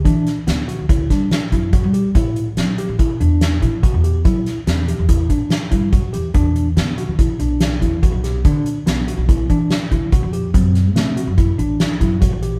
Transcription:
<<
  \new Staff \with { instrumentName = "Tine electric piano" } { \time 5/4 \key a \dorian \tempo 4 = 143 d'4 b8 fis'8 e'8 d'4 e'8 fis'8 g'8 | e'4 c'8 g'8 e'8 d'4 e'8 fis'8 g'8 | e'4 c'8 g'8 e'8 d'4 e'8 fis'8 g'8 | d'4 b8 fis'8 e'8 d'4 e'8 fis'8 g'8 |
d'4 b8 fis'8 e'8 d'4 e'8 fis'8 g'8 | c'4 a8 fis'8 e'8 d'4 e'8 fis'8 g'8 | }
  \new Staff \with { instrumentName = "Upright bass" } { \clef bass \time 5/4 \key a \dorian e8 r8 d,8. d,8. g8 r8 fis,8. g8. | a,4 fis8. a,8 r16 e,4 a,8. e,8. | fis8 r8 e,8. e,8. a,8 r8 g,8 fis,8 e,8 | e,4 d8. e,8 r16 b,,4 e,8. b,,8. |
d8 r8 b,,8. b,,8. e8 r8 d,8. f,8. | fis,4 c8. fis,8 r16 a,,4 fis,8. a,,8. | }
  \new DrumStaff \with { instrumentName = "Drums" } \drummode { \time 5/4 <hh bd>8 <hh sn>8 <hh sn>8 hh8 <hh bd>8 <hh bd sn>8 <hh sn>8 <hh bd>8 <hh bd>8 hh8 | <hh bd>8 hh8 <hh sn>8 hh8 <hh bd>8 hh8 <hh sn>8 <hh bd>8 <hh bd>8 hh8 | <hh bd>8 <hh sn>8 <hh sn>8 hh8 <hh bd>8 <hh bd>8 <hh sn>8 <hh bd>8 <hh bd>8 hh8 | <hh bd>8 hh8 <hh sn>8 hh8 <hh bd>8 hh8 <hh sn>8 <hh bd>8 <hh bd>8 <hh sn>8 |
<hh bd>8 hh8 <hh sn>8 hh8 <hh bd>8 <hh bd>8 <hh sn>8 <hh bd>8 <hh bd>8 hh8 | <hh bd>8 <hh sn>8 <hh sn>8 hh8 <hh bd>8 hh8 <hh sn>8 <hh bd>8 <hh bd>8 hh8 | }
>>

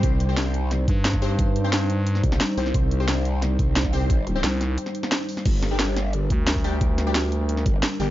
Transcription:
<<
  \new Staff \with { instrumentName = "Synth stab" } { \time 4/4 \key g \minor \tempo 4 = 177 <c' g' c''>8. <c' g' c''>2~ <c' g' c''>8. <c' g' c''>16 r16 | r8. <c' g' c''>16 r2 r8 <c' g' c''>16 r16 | r8. <c' g' c''>2~ <c' g' c''>8. <c' g' c''>16 r16 | r8. <c' g' c''>16 r2. |
r8. <g d' g'>2~ <g d' g'>8. <g d' g'>16 r16 | r8. <g d' g'>16 r2 r8 <g d' g'>16 r16 | }
  \new Staff \with { instrumentName = "Analog synth pad" } { \time 4/4 \key g \minor <g ees' c''>1~ | <g ees' c''>1~ | <g ees' c''>1~ | <g ees' c''>1 |
<g d' bes'>1~ | <g d' bes'>1 | }
  \new Staff \with { instrumentName = "FM bass" } { \clef bass \time 4/4 \key g \minor r2 r8 g,4.~ | g,2~ g,8 r4 c,8 | r1 | r4 c,4 r2 |
r2 r8 d,4.~ | d,2~ d,8 r4 g,,8 | }
  \new Staff \with { instrumentName = "Wobble bass" } { \clef bass \time 4/4 \key g \minor c,2~ c,8 r4. | r2 r8 c,8 r4 | c,2~ c,8 c,4.~ | c,4 r2. |
g,,2~ g,,8 r4. | r2 r8 g,,8 r4 | }
  \new DrumStaff \with { instrumentName = "Drums" } \drummode { \time 4/4 <hh bd>8 hh8 <hh sn>8 hh8 <hh sn>8 <hh bd>8 <hh sn>16 <bd sn>16 hho8 | <hh bd>8 hh8 <hh sn>8 hh8 hh16 sn16 <hh bd>16 sn16 <hh sn>8 hho16 sn16 | <hh bd>8 hh8 <hh sn>8 hh8 <hh sn>8 <hh bd>8 <hh sn>16 <bd sn>16 hho8 | <hh bd>8 hh8 <hh sn>8 <hh sn>8 hh16 sn16 hh16 sn16 <hh sn>8 hho16 sn16 |
<cymc hh bd>8 <hh sn>8 <hh sn>8 <hh sn>8 hh8 <hh bd>8 <hh sn>16 bd16 hho8 | <hh bd>8 <hh sn>8 <hh sn>8 hh8 hh16 sn16 <hh bd>8 <hh sn>8 hho8 | }
>>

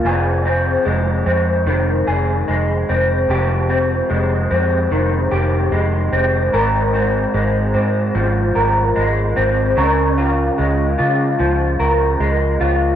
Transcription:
<<
  \new Staff \with { instrumentName = "Clean electric guitar" } { \time 4/4 \key f \minor \tempo 4 = 74 <f, aes'>8 c'8 aes8 c'8 ees8 aes'8 aes8 c'8 | <f, g'>8 c'8 aes8 c'8 ees8 g'8 aes8 c'8 | <aes, bes'>8 c'8 aes8 c'8 f8 bes'8 aes8 c'8 | <des bes'>8 f'8 aes8 f'8 f8 bes'8 aes8 f'8 | }
  \new Staff \with { instrumentName = "Fingered electric bass" } { \clef bass \time 4/4 \key f \minor f,,4 f,,8 f,8 f,,8 f,,8 f,,8 f,,8 | f,,4 f,,8 f,8 f,,8 f,,8 f,,8 f,,8 | aes,,4 aes,,8 aes,8 aes,,8 aes,,8 aes,,8 aes,,8 | des,4 des,8 des8 des,8 des,8 des,8 des,8 | }
>>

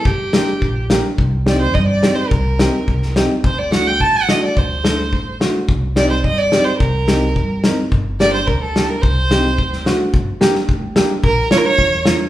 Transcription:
<<
  \new Staff \with { instrumentName = "Violin" } { \time 2/4 \tempo 4 = 107 g'4. r8 | r8 d''16 c''16 ees''16 d''8 c''16 | bes'4. r8 | c''16 d''16 fis''16 g''16 a''16 fis''16 ees''16 d''16 |
c''4. r8 | r8 d''16 c''16 ees''16 d''8 c''16 | bes'4. r8 | r8 d''16 c''16 bes'16 a'8 bes'16 |
c''4. r8 | r2 | bes'8 cis''32 bes'32 cis''8. r8 | }
  \new Staff \with { instrumentName = "Upright piano" } { \time 2/4 r8 <bes d' g'>16 r8. <bes d' g'>16 r16 | r8 <c' ees' g'>16 r8. <c' ees' g'>16 r16 | r8 <c' ees' g'>16 r8. <c' ees' g'>16 r16 | r8 <a d' fis'>16 r8. <a d' fis'>16 r16 |
r8 <a d' a'>16 r8. <a d' fis'>16 r16 | r8 <c' ees' g'>16 r8. <c' ees' g'>16 r16 | r8 <c' ees' g'>16 r8. <c' ees' bes'>16 r16 | r8 <bes d' g'>16 r8. <bes d' g'>16 r16 |
r8 <c' ees' g'>16 r8. <a d' fis'>16 r16 | r8 <bes d' g'>16 r8. <bes d' g'>16 r16 | r8 <bes d' f'>16 r8. <bes d' f'>16 r16 | }
  \new Staff \with { instrumentName = "Upright bass" } { \clef bass \time 2/4 g,,4 bes,,4 | c,4 g,4 | c,4 c,4 | d,4 a,,4 |
d,4 a,,4 | c,4 g,4 | c,4 g,4 | g,,4 d,4 |
c,4 d,4 | g,,8 r8 d,4 | bes,,8 r8 e,4 | }
  \new DrumStaff \with { instrumentName = "Drums" } \drummode { \time 2/4 bd8 sn8 bd8 sn8 | bd8 sn8 bd8 sn8 | bd8 sn8 bd16 sn16 sn8 | bd8 sn8 bd8 sn8 |
bd8 sn8 bd8 sn8 | bd8 sn8 bd8 sn8 | bd8 sn8 bd8 sn8 | bd8 sn8 bd8 sn8 |
bd8 sn8 bd16 sn16 sn8 | bd8 sn16 sn16 bd8 sn8 | bd8 sn8 bd8 sn8 | }
>>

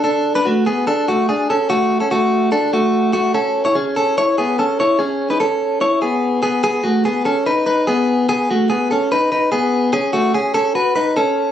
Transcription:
\new Staff \with { instrumentName = "Clean electric guitar" } { \time 4/4 \key a \lydian \tempo 4 = 146 <d' a'>8. <d' b'>16 <a fis'>8 <b gis'>8 <d' a'>8 <a fis'>8 <d' gis'>8 <cis' a'>8 | <a fis'>8. <cis' a'>16 <a fis'>4 <d' a'>8 <a fis'>4 <a fis'>8 | <cis' a'>8. <e' cis''>16 <cis' gis'>8 <cis' a'>8 <e' cis''>8 <b gis'>8 <cis' a'>8 <e' cis''>8 | <cis' gis'>8. <dis' b'>16 <cis' a'>4 <e' cis''>8 <b gis'>4 <b gis'>8 |
<b gis'>8 <a fis'>8 <b gis'>8 <cis' a'>8 <dis' b'>8 <dis' b'>8 <b gis'>4 | <b gis'>8 <a fis'>8 <b gis'>8 <cis' a'>8 <dis' b'>8 <dis' b'>8 <b gis'>4 | <cis' gis'>8 <a fis'>8 <cis' gis'>8 <cis' a'>8 <fis' b'>8 <dis' b'>8 <cis' a'>4 | }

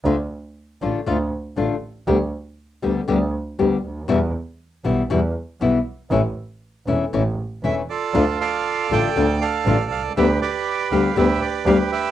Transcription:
<<
  \new Staff \with { instrumentName = "Bandoneon" } { \time 4/4 \key d \minor \tempo 4 = 119 << { r1 | r1 | r1 | r2. e''8 d''8~ |
d''8 f''4 g''4 f''4 f''8 | e''8 d''4 f''8 e''8 d''8 f''8 e''8 | } \\ { r1 | r1 | r1 | r2. r8 <f' a'>8~ |
<f' a'>8 <a' d''>4 d''4 <a' d''>4. | <g' b'>8 <g' b'>4. <g' b'>4. <g' b'>8 | } >> }
  \new Staff \with { instrumentName = "Nylon-string guitar" } { \time 4/4 \key d \minor <d a d' f'>8 r4 <d a d' f'>8 <d a d' f'>8 r8 <d a d' f'>8 r8 | <d g b g'>8 r4 <d g b g'>8 <d g b g'>8 r8 <d g b g'>8 r8 | <b, e g b e'>8 r4 <b, e g b e'>8 <b, e g b e'>8 r8 <b, e g b e'>8 r8 | <e a cis' e'>8 r4 <e a cis' e'>8 <e a cis' e'>8 r8 <e a cis' e'>8 r8 |
<d a d' f'>8 r4 <d a d' f'>8 <d a d' f'>8 r8 <d a d' f'>8 r8 | <d g b g'>8 r4 <d g b g'>8 <d g b g'>8 r8 <d g b g'>8 r8 | }
  \new Staff \with { instrumentName = "Double bass" } { \clef bass \time 4/4 \key d \minor d,8 r4 a,,8 d,8 r8 a,,8 r8 | d,8 r4 d,8 d,8 r8 d,8 d,8 | e,8 r4 b,,8 e,8 r8 b,,8 r8 | a,,8 r4 e,,8 a,,8 r8 e,,8 r8 |
d,8 r4 a,,8 d,8 r8 a,,8 c,8 | d,8 r4 d,8 d,8 r8 d,8 r8 | }
>>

